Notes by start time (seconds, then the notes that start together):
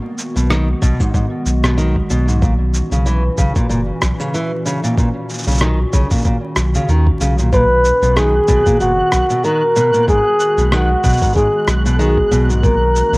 Already playing: D#3 G#3 B3 F#4
0.18 cabasa
0.36 B1 B2, cabasa
0.50 D#3, cross-stick, cabasa
0.82 B1 B2, kick, cabasa
1.00 G#2, kick, cabasa
1.14 G#2, kick, cabasa
1.46 B1, cabasa
1.64 B2, cross-stick, cabasa
1.78 D#3, cabasa
1.96 kick
2.10 B1 B2, cabasa
2.28 G#2, cabasa
2.41 A#2 E3 C#4, kick, cabasa
2.74 cabasa
2.91 B1 C#3, cabasa
3.06 E3, cabasa
3.38 B1 C#3, kick, cabasa
3.56 A#2, kick, cabasa
3.69 F#1 A#2, cabasa
4.02 B1, kick, cross-stick, cabasa
4.20 C#3, cabasa
4.34 E3, cabasa
4.66 C#3, cabasa
4.84 A#2, cabasa
4.98 A#2 D#3, kick, cabasa
5.30 cabasa
5.34 cabasa
5.38 cabasa
5.43 cabasa
5.47 B1 C#3, cabasa
5.51 cabasa
5.54 cabasa
5.57 D#3, cross-stick, cabasa
5.61 cabasa
5.93 B1 C#3, kick, cabasa
6.11 A#2, kick, cabasa
6.14 cabasa
6.18 cabasa
6.21 cabasa
6.24 A#2, kick, cabasa
6.56 B1, cross-stick, cabasa
6.75 C#3, cabasa
6.88 D#2 D#3, cabasa
7.07 kick
7.20 B1 C#3, cabasa
7.38 A#2, cabasa
7.52 A#2 F#4 B4 F#6, kick, cabasa
7.85 cabasa
8.02 B1 B2, cabasa
8.16 D#3 G#4, cross-stick, cabasa
8.48 B1 B2, kick, cabasa
8.66 A#2, kick, cabasa
8.79 F#1 A#2 F#4, cabasa
9.12 B1, kick, cross-stick, cabasa
9.30 B2, cabasa
9.44 D#3 A#4, cabasa
9.76 B2, cabasa
9.94 A#2, cabasa
10.08 G#2 G#3 G#4, kick, cabasa
10.40 cabasa
10.57 B1 B2, cabasa
10.72 D#3 F#4, cross-stick, cabasa
11.04 B1 B2, kick, cabasa
11.09 cabasa
11.13 cabasa
11.17 cabasa
11.22 G#2, kick, cabasa
11.25 cabasa
11.29 cabasa
11.32 G#2 G#4, kick, cabasa
11.36 cabasa
11.67 B1, cross-stick, cabasa
11.86 B2, cabasa
11.98 D#3 G#4, cabasa
12.17 kick
12.31 B1 B2, cabasa
12.49 G#2, cabasa
12.62 A#2 E3 A#3 C#4 A#4, kick, cabasa
12.96 cabasa
13.12 B1 C#3, cabasa